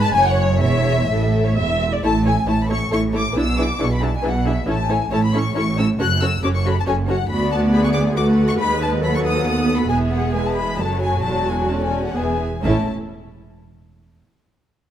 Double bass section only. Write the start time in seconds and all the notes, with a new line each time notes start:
Already playing: G#2
0.14 F#1
0.61 E1
1.09 A1
1.57 E1
2.04 A1
2.48 A1
2.92 A1
3.36 B1
3.80 B1
4.23 B1
4.67 A1
5.11 A1
5.56 A1
5.99 F#1
6.43 F#1
6.87 F#1
7.30 D2
8.59 D#2
9.91 E1
10.79 F#1
11.24 E1
12.17 E1
12.64 A1